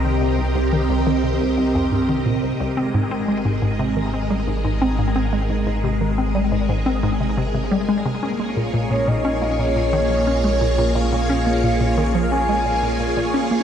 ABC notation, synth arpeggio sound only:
X:1
M:4/4
L:1/16
Q:1/4=88
K:Ab
V:1 name="Synth arpeggio sound" clef=bass
E, B,, C,, C,, E, C,, E, C, C,, C,, F,, G,, E, B,, C,, C,, | C A,, C A, A,, A,, C, E, C G, A,, A,, C A,, C A, | A,, A,, C, E, C G, A,, A,, C A,, C, C, C, G, A, C, | D A, B,, B,, B,, B,, D B, B,, B,, E, F, D A, B,, B,, |
B,, B,, D B, B,, B,, E, F, D A, B,, B,, B,, B,, D B, |]